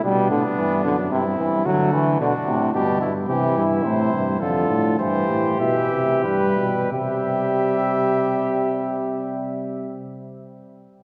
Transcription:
<<
  \new Staff \with { instrumentName = "Trumpet" } { \time 3/4 \key c \major \tempo 4 = 101 d'2 e'4 | fis'4 fis'4 g'8 e'8 | g'8 r8 c''4 a'4 | c''4 e''4 b'4 |
e''2.~ | e''2. | }
  \new Staff \with { instrumentName = "Flugelhorn" } { \time 3/4 \key c \major b2 c'4 | a4 d'4 d'8 r8 | e'2 f'4 | g'2. |
g'2.~ | g'2. | }
  \new Staff \with { instrumentName = "Euphonium" } { \clef bass \time 3/4 \key c \major g8 d8 e8 d8 c8 e8 | fis8 e8 d8 c8 b,8 r8 | e4 c4 d4 | e4 e4 g4 |
g2.~ | g2. | }
  \new Staff \with { instrumentName = "Tuba" } { \clef bass \time 3/4 \key c \major b,8 a,8 g,8 fis,8 g,8 g,8 | d4 b,8 a,8 g,8 g,8 | c8 g,8 a,8 g,8 f,8 a,8 | g,8 a,8 b,8 c8 g,8 b,8 |
c2.~ | c2. | }
>>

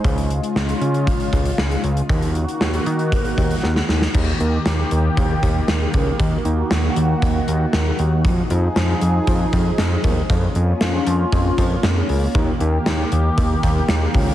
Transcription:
<<
  \new Staff \with { instrumentName = "Analog synth pad" } { \time 4/4 \key ees \dorian \tempo 4 = 117 << { <des aes f'>1 | <ees ges'>1 | <ees g'>1 | <ees ges'>1 |
<f aes'>1 | <bes f'>1 | <ees g'>1 | } \\ { r1 | bes1 | bes1~ | bes1 |
ees'1 | des'1 | r1 | } >> }
  \new Staff \with { instrumentName = "Analog synth bass" } { \clef bass \time 4/4 \key ees \dorian des,4 des,8 des8. r16 des,8 des,8 des,8 | ees,4 ees,8 ees8. r16 ees,8 ees,8 ees,8 | ees,8 ees,8 ees,8 ees,8 ees,8 ees,8 ees,8 des,8 | ees,8 ees,8 ees,8 ees,8 ees,8 ees,8 ees,8 ees,8 |
f,8 f,8 f,8 f,8 f,8 f,8 f,8 ees,8 | f,8 f,8 f,8 f,8 f,8 f,8 f,8 des,8 | ees,8 ees,8 ees,8 ees,8 ees,8 ees,8 ees,8 des,8 | }
  \new DrumStaff \with { instrumentName = "Drums" } \drummode { \time 4/4 <hh bd>16 hh16 hh16 hh16 sn16 hh16 hh16 hh16 <hh bd>16 hh16 <hh bd>16 hh16 sn16 hh16 hh16 hh16 | <hh bd>16 hh16 hh16 hh16 sn16 hh16 hh16 hh16 <hh bd>16 hh16 <hh bd>16 hh16 sn16 sn16 sn16 sn16 | <cymc bd>8 hh8 <hh sn>8 hh8 <hh bd>8 <hh bd>8 <hh sn>8 <hh bd>8 | <hh bd>8 hh8 <hh sn>8 hh8 <hh bd>8 hh8 <hh sn>8 hh8 |
<hh bd>8 hh8 <hh sn>8 hh8 <hh bd>8 <hh bd>8 <hh sn>8 <hh bd>8 | <hh bd>8 hh8 <hh sn>8 hh8 <hh bd>8 <hh bd>8 <hh sn>8 hho8 | <hh bd>8 hh8 <hh sn>8 hh8 <hh bd>8 <hh bd>8 <hh sn>8 <hho bd>8 | }
>>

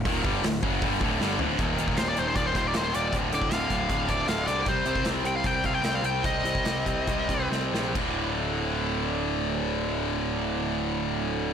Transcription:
<<
  \new Staff \with { instrumentName = "Lead electric guitar" } { \time 4/4 \tempo 4 = 153 r1 | r4 c''16 d''16 c''16 c''16 d''16 c''16 c''16 d''16 c''8 d''8 | r8 d''8 f''4. d''8 f''8 d''8 | c''4 r8 g''16 f''16 g''16 g''16 f''16 g''16 g''16 f''16 g''8 |
ees''2. r4 | r1 | r1 | }
  \new Staff \with { instrumentName = "Distorted electric guitar" } { \clef bass \time 4/4 <ees, bes, ees>8 <g, d g>8 <d, a,>8 <fis, cis fis>8 <g, d g>8 <d, a, d>8 <g, d g>8 <d, a, d>8 | <ees, bes, ees>8 <ees, bes, ees>8 <ees, bes, ees>8 <ees, bes, ees>8 <ees, bes, ees>8 <ees, bes, ees>8 <ees, bes, ees>8 <ees, bes, ees>8 | <d, a, d>8 <d, a, d>8 <d, a, d>8 <d, a, d>8 <d, a, d>8 <d, a, d>8 <d, a, d>8 <d, a, d>8 | <c g c'>8 <c g c'>8 <c g c'>8 <c g c'>8 <c g c'>8 <c g c'>8 <c g c'>8 <c g c'>8 |
<c g c'>8 <c g c'>8 <c g c'>8 <c g c'>8 <c g c'>8 <c g c'>8 <c g c'>8 <c g c'>8 | <d, a, d>1~ | <d, a, d>1 | }
  \new Staff \with { instrumentName = "Distorted electric guitar" } { \clef bass \time 4/4 <ees, bes, ees>8 <g, d g>8 <d, a,>8 <fis, cis fis>8 <g, d g>8 <d, a, d>8 <g, d g>8 <d, a, d>8 | <ees, bes, ees>8 <ees, bes, ees>8 <ees, bes, ees>8 <ees, bes, ees>8 <ees, bes, ees>8 <ees, bes, ees>8 <ees, bes, ees>8 <ees, bes, ees>8 | <d, a, d>8 <d, a, d>8 <d, a, d>8 <d, a, d>8 <d, a, d>8 <d, a, d>8 <d, a, d>8 <d, a, d>8 | <c g c'>8 <c g c'>8 <c g c'>8 <c g c'>8 <c g c'>8 <c g c'>8 <c g c'>8 <c g c'>8 |
<c g c'>8 <c g c'>8 <c g c'>8 <c g c'>8 <c g c'>8 <c g c'>8 <c g c'>8 <c g c'>8 | <d, a, d>1~ | <d, a, d>1 | }
  \new Staff \with { instrumentName = "Picked electric bass" } { \clef bass \time 4/4 ees,,8 g,,8 d,,8 fis,,8 g,,8 d,,8 g,,8 d,,8 | ees,,8 ees,,8 ees,,8 ees,,8 ees,,8 ees,,8 ees,,8 ees,,8 | d,,8 d,,8 d,,8 d,,8 d,,8 d,,8 d,,8 c,8 | c,8 c,8 c,8 c,8 c,8 c,8 c,8 c,8 |
c,8 c,8 c,8 c,8 c,8 c,8 c,8 bes,,8 | d,,1~ | d,,1 | }
  \new DrumStaff \with { instrumentName = "Drums" } \drummode { \time 4/4 <hho bd>8 bd8 <hho sn>8 bd8 <hho bd>8 bd8 sn8 tomfh8 | <hh bd>8 hh16 bd16 <hh sn>8 hh8 <hh bd>8 <hh bd>8 <hh sn>8 hh8 | <hh bd>8 hh16 bd16 <hh sn>8 <hh bd>8 <hh bd>8 <hh bd>8 <hh sn>8 hh8 | <hh bd>8 hh16 bd16 <hh sn>8 hh8 <hh bd>8 <hh bd>8 <hh sn>8 hh8 |
<hh bd>8 hh16 bd16 <hh sn>8 <hh bd>8 <hh bd>8 <hh bd>8 sn8 sn8 | <cymc bd>4 r4 r4 r4 | r4 r4 r4 r4 | }
>>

